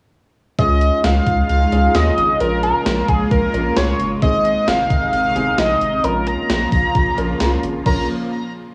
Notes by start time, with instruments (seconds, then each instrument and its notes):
0.58 analog synth bass C#2, analog synth pad C#3 G#3 D#4 F4, grand piano C#4 F4 G#4, analog synth lead D#5, kick, closed hi-hat
0.81 closed hi-hat
1.04 analog synth bass C#2, analog synth lead F5, snare, closed hi-hat
1.27 analog synth bass C#2, kick, closed hi-hat
1.50 analog synth bass C#2, analog synth lead F5, closed hi-hat
1.72 analog synth bass C#2, grand piano C#4 F4 G#4, closed hi-hat
1.95 analog synth bass D#2, analog synth lead D#5, snare, closed hi-hat
2.18 analog synth bass G#1, closed hi-hat
2.40 analog synth bass A#1, analog synth pad G#3 A#3 F4, grand piano C#4 F4 A#4, analog synth lead A#4, closed hi-hat
2.63 analog synth lead A#4, closed hi-hat
2.86 analog synth bass A#1, snare, closed hi-hat
3.08 analog synth bass A#1, analog synth lead G#4, kick, closed hi-hat
3.31 analog synth bass A#1, analog synth lead A#4, kick, closed hi-hat
3.54 analog synth bass A#1, grand piano C#4 F4 A#4, closed hi-hat
3.77 analog synth bass C2, analog synth lead C#5, snare, closed hi-hat
3.99 analog synth bass F#1, closed hi-hat
4.22 analog synth bass G#1, analog synth pad C3 D#3 D#4, grand piano C4 D#4 G#4, analog synth lead D#5, kick, closed hi-hat
4.45 closed hi-hat
4.68 analog synth bass G#1, analog synth lead F5, snare, closed hi-hat
4.90 analog synth bass G#1, kick, closed hi-hat
5.13 analog synth bass G#1, analog synth lead F5, closed hi-hat
5.36 analog synth bass G#1, grand piano C4 D#4 G#4, closed hi-hat
5.58 analog synth bass A#1, analog synth lead D#5, snare, closed hi-hat
5.81 analog synth bass G#1, closed hi-hat
6.04 analog synth bass A#1, analog synth pad C#3 F3 A#3 F4, grand piano C#4 F4 A#4, analog synth lead A#4, closed hi-hat
6.27 analog synth lead A#5, closed hi-hat
6.50 analog synth bass A#1, snare, closed hi-hat
6.72 analog synth bass A#1, kick, open hi-hat
6.95 analog synth bass A#1, kick, closed hi-hat
7.18 analog synth bass A#1, grand piano C#4 F4 A#4, closed hi-hat
7.40 analog synth bass C2, snare, closed hi-hat
7.63 analog synth bass G#1, closed hi-hat
7.86 analog synth bass A#1, analog synth pad C#3 F3 A#3 F4, grand piano C#4 F4 A#4, analog synth lead A#5, kick, crash